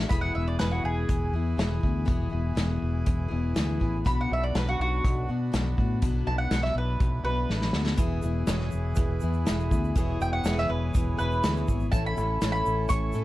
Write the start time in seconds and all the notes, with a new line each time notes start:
Already playing: A3 D4 F#4
0.08 E1 E3 B3 E4 G#4 B4 B5, kick, closed hi-hat
0.13 G#4
0.21 F#5
0.34 E1 B3 E4 G#4 E5
0.48 D5
0.59 E1 E3 B3 E4 G#4 B4, snare, closed hi-hat
0.71 F#4
0.84 E1 G#4
1.09 E1, kick, closed hi-hat
1.33 E2 B3 E4 G#4
1.57 E1 E3 B3 E4 G#4, snare, closed hi-hat
1.81 D2 B3 E4 G#4, kick
2.05 E1 E3 B3 E4 G#4, kick, closed hi-hat
2.30 E1 B3 E4 G#4
2.55 E1 E3 B3 E4 G#4, snare, closed hi-hat
2.82 E1
3.06 E1, kick, closed hi-hat
3.28 E1 B3 E4 G#4
3.54 D2 E3 B3 E4 G#4, snare, closed hi-hat
3.80 A1 B3 E4 G#4, kick
4.04 B1 B2 F#3 B3 D4 F#4 B5, kick, closed hi-hat
4.21 F#5
4.29 B1 B3 D4 F#4
4.33 E5
4.44 D5
4.55 B1 F#3 B3 D4 F#4 B4, snare, closed hi-hat
4.69 F#4
4.79 B1 F#4
5.04 B1, kick, closed hi-hat
5.28 B2 B3 D4 F#4
5.52 B1 F#3 B3 D4 F#4, snare, closed hi-hat
5.77 A2 B3 D4 F#4, kick
6.00 B1 B2 F#3 B3 D4 E4 F#4, kick, closed hi-hat
6.27 B1 B3 D4 F#4 A5
6.38 F#5
6.51 B1 F#3 B3 D4 F#4, snare, closed hi-hat
6.63 E5, snare
6.75 B1 B4
7.00 B1, kick, closed hi-hat
7.23 B1 B3 D4 F#4 B4
7.49 A1 F#3 B3 D4 F#4, snare
7.62 snare
7.73 D2 B3 D4 F#4, snare
7.86 snare
7.97 E1 E3 B3 E4 G#4 B4, kick, closed hi-hat, shaker
8.22 E1 B3 E4 G#4, shaker
8.47 E1 E3 B3 E4 G#4 C#5, snare, closed hi-hat, shaker
8.60 snare
8.71 E1, shaker
8.95 E1 E4 G#4 B4, kick, closed hi-hat, shaker
9.20 E2 B3 E4 G#4, shaker
9.33 shaker
9.45 E1 E3 B3 E4 G#4 B4, snare, closed hi-hat, shaker
9.59 shaker
9.71 D2 B3 E4 G#4, kick, shaker
9.84 shaker
9.96 E1 E3 B3 E4 G#4 B4 C#5, kick, closed hi-hat, shaker
10.20 E1 B3 G5, shaker
10.33 F#5
10.43 E1 E3 B3 E4 G#4 B4, snare, closed hi-hat, shaker
10.58 E5, snare, shaker
10.69 E1 B4
10.94 E1 E4 G#4 B4, kick, closed hi-hat, shaker
11.17 E1 B3 E4 G#4 B4, shaker
11.32 shaker
11.42 D2 E3 B3 E4 G#4 B4, snare, closed hi-hat, shaker
11.56 shaker
11.68 G#1 B3 E4 G#4, kick, shaker
11.80 shaker
11.92 A1 A2 E3 A3 C#4 E4 A4 C#5 A5, kick, closed hi-hat, shaker
12.06 B5
12.14 A1 A3 C#4 E4 A4, shaker
12.41 A1 A3 C#4 E4 A4 C#5, snare, closed hi-hat, shaker
12.52 B5, shaker
12.66 A1, shaker
12.89 A1 E4 A4 C#5 C#6, kick, closed hi-hat, shaker
13.12 A2 A3 C#4 E4 A4, shaker